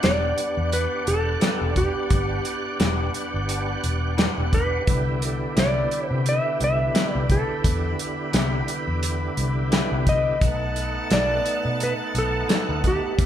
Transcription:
0.00 0.31 E1 medium
0.00 0.25 E3 medium
0.00 4.83 B3 medium
0.00 0.25 B3 medium
0.00 4.83 D4 medium
0.00 0.26 D4 medium
0.00 10.37 E4 medium
0.00 4.83 G4 medium
0.00 4.84 G4 medium
0.00 0.26 G4 medium
0.00 4.83 D5 medium
0.00 0.75 D5 medium
0.00 4.84 F#5 medium
0.00 snare loud
0.00 closed hi-hat medium
0.38 closed hi-hat medium
0.57 0.85 E2 medium
0.72 1.05 B4 medium
0.72 closed hi-hat medium
1.07 1.35 E1 medium
1.07 1.79 A4 medium
1.07 closed hi-hat medium
1.41 1.64 E3 medium
1.41 1.64 B3 medium
1.41 1.64 D4 medium
1.41 1.64 G4 medium
1.41 snare loud
1.41 closed hi-hat medium
1.61 1.89 E1 medium
1.76 2.77 G4 medium
1.76 kick medium
1.76 closed hi-hat medium
2.10 2.39 G1 medium
2.10 kick loud
2.10 closed hi-hat medium
2.45 closed hi-hat medium
2.80 3.08 E1 medium
2.80 3.02 E3 medium
2.80 3.02 B3 medium
2.80 3.03 D4 medium
2.80 3.03 G4 medium
2.80 snare loud
2.80 closed hi-hat medium
3.14 closed hi-hat medium
3.34 3.74 G1 medium
3.49 closed hi-hat medium
3.84 4.27 E1 medium
3.84 closed hi-hat medium
4.18 4.40 E3 medium
4.18 4.41 B3 medium
4.18 4.41 D4 medium
4.18 4.41 G4 loud
4.18 snare loud
4.18 closed hi-hat medium
4.38 4.78 E1 medium
4.53 5.28 B4 medium
4.53 kick medium
4.53 closed hi-hat medium
4.86 5.44 C2 medium
4.86 10.37 D3 medium
4.86 10.37 B3 medium
4.86 10.38 E4 medium
4.86 10.38 G4 medium
4.86 10.37 B4 medium
4.86 10.37 B5 medium
4.86 kick loud
4.86 closed hi-hat medium
5.22 closed hi-hat medium
5.28 5.61 A4 medium
5.56 5.85 C2 medium
5.56 5.79 C3 medium
5.56 5.79 B3 medium
5.56 5.80 E4 medium
5.56 5.80 G4 medium
5.56 6.07 D5 medium
5.56 snare loud
5.56 closed hi-hat medium
5.91 closed hi-hat medium
6.07 6.39 C3 medium
6.07 6.23 C5 medium
6.26 6.63 E5 medium
6.26 closed hi-hat medium
6.60 6.89 C2 medium
6.60 7.12 E5 loud
6.60 closed hi-hat medium
6.94 7.17 C3 medium
6.94 7.17 B3 medium
6.94 7.18 E4 medium
6.94 7.18 G4 medium
6.94 snare loud
6.94 closed hi-hat medium
7.12 7.43 C2 medium
7.12 7.28 D5 loud
7.30 7.96 A4 medium
7.30 kick medium
7.30 closed hi-hat medium
7.64 7.93 E2 loud
7.64 kick loud
7.64 closed hi-hat medium
7.99 closed hi-hat medium
8.33 8.62 C2 medium
8.33 8.56 C3 medium
8.33 8.56 B3 medium
8.33 8.56 E4 medium
8.33 8.56 G4 medium
8.33 snare loud
8.33 closed hi-hat medium
8.68 closed hi-hat medium
8.88 9.28 E2 medium
9.03 closed hi-hat medium
9.37 9.81 C2 medium
9.37 closed hi-hat medium
9.72 9.94 C3 medium
9.72 9.95 B3 medium
9.72 9.95 E4 loud
9.72 9.95 G4 medium
9.72 snare loud
9.72 closed hi-hat medium
9.92 10.32 C2 medium
10.07 11.08 D#5 loud
10.07 kick medium
10.07 closed hi-hat medium
10.39 10.98 B1 loud
10.39 13.13 A3 medium
10.39 13.14 B3 medium
10.39 13.14 D#4 medium
10.39 13.16 D#4 medium
10.39 13.16 B4 medium
10.39 13.15 F#5 medium
10.39 13.16 A5 medium
10.39 kick loud
10.39 closed hi-hat medium
10.76 closed hi-hat medium
11.11 11.39 B1 medium
11.11 11.33 B2 medium
11.11 11.33 D#3 medium
11.11 11.34 A3 medium
11.11 11.34 D4 medium
11.11 11.83 D5 loud
11.11 snare loud
11.11 closed hi-hat medium
11.46 closed hi-hat medium
11.65 11.93 B2 medium
11.80 11.92 B4 medium
11.80 closed hi-hat medium
12.15 12.43 B1 medium
12.15 12.87 A4 medium
12.15 closed hi-hat medium
12.49 12.71 B2 medium
12.49 12.72 D#3 medium
12.49 12.72 A3 medium
12.49 12.72 D4 medium
12.49 snare loud
12.49 closed hi-hat medium
12.69 12.97 D2 medium
12.84 13.26 G4 medium
12.84 kick medium
12.84 closed hi-hat medium
13.17 13.26 E2 loud
13.17 13.26 G3 medium
13.17 13.26 B3 medium
13.17 13.26 D4 medium
13.17 13.26 G4 medium
13.17 13.26 D5 medium
13.17 13.26 E5 medium
13.17 13.26 F#5 medium
13.17 kick loud
13.17 closed hi-hat medium

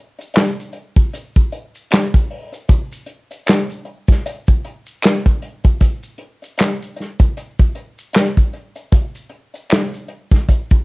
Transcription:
0.19 closed hi-hat soft
0.19 maracas soft
0.34 finger snap medium
0.34 snare loud
0.34 clap loud
0.34 closed hi-hat medium
0.34 maracas medium
0.60 maracas soft
0.73 closed hi-hat medium
0.96 kick loud
0.96 maracas medium
1.13 closed hi-hat medium
1.13 maracas medium
1.36 kick loud
1.36 maracas soft
1.52 closed hi-hat medium
1.75 maracas medium
1.91 finger snap medium
1.91 snare loud
1.91 clap medium
1.91 closed hi-hat medium
1.91 maracas medium
2.14 kick loud
2.14 maracas soft
2.31 open hi-hat soft
2.52 closed hi-hat soft
2.52 maracas medium
2.68 kick loud
2.68 closed hi-hat medium
2.68 maracas medium
2.92 maracas medium
3.06 closed hi-hat medium
3.30 closed hi-hat soft
3.30 maracas soft
3.46 finger snap medium
3.46 snare loud
3.46 clap loud
3.46 closed hi-hat medium
3.46 maracas medium
3.70 maracas soft
3.85 closed hi-hat medium
4.08 kick loud
4.08 snare soft
4.08 closed hi-hat soft
4.08 maracas soft
4.26 closed hi-hat medium
4.26 maracas medium
4.47 kick medium
4.47 maracas soft
4.64 closed hi-hat medium
4.86 maracas soft
5.02 finger snap medium
5.02 snare loud
5.02 clap medium
5.02 closed hi-hat medium
5.02 maracas medium
5.26 kick medium
5.26 maracas soft
5.42 closed hi-hat medium
5.64 kick loud
5.64 closed hi-hat soft
5.64 maracas soft
5.80 kick medium
5.80 closed hi-hat medium
5.80 maracas medium
6.03 maracas soft
6.18 closed hi-hat medium
6.42 closed hi-hat soft
6.42 maracas soft
6.58 finger snap medium
6.58 snare loud
6.58 clap loud
6.58 closed hi-hat medium
6.58 maracas medium
6.82 maracas soft
6.96 closed hi-hat medium
7.00 snare soft
7.20 kick loud
7.20 closed hi-hat soft
7.20 maracas medium
7.37 closed hi-hat medium
7.37 maracas medium
7.59 kick loud
7.59 maracas soft
7.75 closed hi-hat medium
7.98 maracas medium
8.13 finger snap medium
8.13 snare loud
8.13 clap medium
8.13 closed hi-hat medium
8.13 maracas medium
8.37 kick medium
8.37 maracas soft
8.53 closed hi-hat medium
8.76 closed hi-hat soft
8.76 maracas soft
8.92 kick loud
8.92 closed hi-hat medium
8.92 maracas medium
9.15 maracas soft
9.29 closed hi-hat medium
9.54 closed hi-hat soft
9.54 maracas soft
9.70 finger snap medium
9.70 snare loud
9.70 clap medium
9.70 closed hi-hat medium
9.70 maracas medium
9.94 maracas soft
10.08 closed hi-hat medium
10.31 kick loud
10.31 snare soft
10.31 maracas medium
10.49 kick medium
10.49 closed hi-hat medium
10.49 maracas medium
10.70 kick loud
10.70 maracas soft

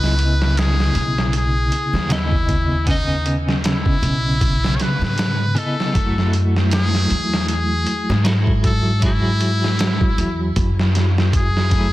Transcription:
0.00 0.92 C#2 medium
0.00 2.05 C#3 medium
0.00 2.06 B3 medium
0.00 2.08 E4 medium
0.00 0.60 B4 loud
0.00 2.09 D#5 medium
0.00 snare soft
0.19 closed hi-hat medium
0.42 snare soft
0.57 1.34 G#4 loud
0.57 snare loud
0.57 closed hi-hat medium
0.80 snare medium
0.95 1.69 B1 medium
0.95 closed hi-hat medium
1.18 snare soft
1.33 2.08 G#4 medium
1.33 closed hi-hat medium
1.72 closed hi-hat medium
1.93 3.99 D#2 medium
1.93 snare soft
2.09 2.83 C#3 medium
2.09 2.83 B3 medium
2.09 2.84 E4 medium
2.09 2.84 D#5 medium
2.09 snare loud
2.09 closed hi-hat medium
2.32 kick medium
2.49 kick medium
2.49 closed hi-hat medium
2.84 5.51 C#3 medium
2.84 5.52 B3 medium
2.84 kick medium
2.84 closed hi-hat medium
2.88 5.53 C#4 medium
2.88 3.36 D#4 medium
2.88 5.54 D#5 medium
3.26 closed hi-hat medium
3.49 snare soft
3.64 4.77 E4 loud
3.64 snare loud
3.64 closed hi-hat medium
3.86 kick loud
4.02 4.76 B1 medium
4.02 closed hi-hat medium
4.41 kick medium
4.41 closed hi-hat medium
4.64 snare soft
4.75 4.83 C#5 medium
4.80 5.60 B4 loud
4.80 snare soft
4.80 closed hi-hat medium
5.02 5.53 G#2 medium
5.02 snare medium
5.18 snare loud
5.18 closed hi-hat medium
5.55 5.90 C#3 medium
5.55 5.91 B3 medium
5.55 5.91 E4 medium
5.55 6.34 A4 medium
5.55 5.92 D#5 medium
5.55 closed hi-hat medium
5.80 snare soft
5.92 7.07 F#2 medium
5.92 8.21 F#3 medium
5.92 8.22 E4 medium
5.92 kick loud
5.92 closed hi-hat medium
5.97 8.24 A3 medium
5.97 8.23 F#4 medium
6.18 snare soft
6.33 closed hi-hat medium
6.56 snare medium
6.71 7.46 G#4 loud
6.71 snare loud
6.71 closed hi-hat medium
6.95 snare medium
7.10 7.84 E2 medium
7.10 closed hi-hat medium
7.33 snare medium
7.48 8.22 G#4 loud
7.48 closed hi-hat medium
7.86 closed hi-hat medium
8.10 10.15 G#2 medium
8.10 snare soft
8.24 8.98 F#3 medium
8.24 8.99 E4 medium
8.24 8.99 F#4 medium
8.24 9.00 A4 medium
8.24 snare loud
8.24 closed hi-hat medium
8.47 kick medium
8.64 9.01 A4 loud
8.64 kick loud
8.64 closed hi-hat medium
9.00 11.66 F#3 medium
9.00 11.68 E4 medium
9.00 kick medium
9.00 closed hi-hat medium
9.04 10.54 E4 loud
9.04 11.70 F#4 loud
9.04 11.69 G#4 medium
9.41 closed hi-hat medium
9.64 snare soft
9.79 snare loud
9.79 closed hi-hat medium
10.01 kick loud
10.18 10.56 E2 medium
10.18 closed hi-hat medium
10.56 11.93 F#2 medium
10.56 kick medium
10.56 closed hi-hat medium
10.79 snare soft
10.95 snare soft
10.95 closed hi-hat medium
11.18 snare medium
11.33 11.93 G#4 loud
11.33 kick loud
11.33 closed hi-hat medium
11.57 snare soft
11.70 11.93 F#3 medium
11.70 11.93 A3 medium
11.70 11.93 E4 medium
11.70 11.93 G#4 medium
11.70 kick medium
11.70 closed hi-hat medium

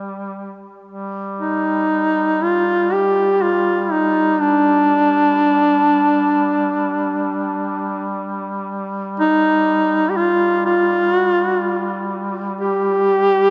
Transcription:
0.00 0.70 G3 soft
0.87 13.50 G3 soft
1.39 2.44 D#4 medium
2.42 2.94 F4 medium
2.93 3.44 G4 medium
3.42 3.83 F4 medium
3.83 3.93 F4 medium
3.91 4.42 D#4 medium
4.40 8.23 D4 loud
9.20 10.11 D#4 loud
10.10 10.18 G4 medium
10.16 10.64 F4 loud
10.65 11.15 F4 loud
11.15 11.29 F#4 loud
11.29 11.43 F4 loud
11.43 11.57 F#4 loud
11.57 12.07 F4 loud
12.60 13.50 G4 loud

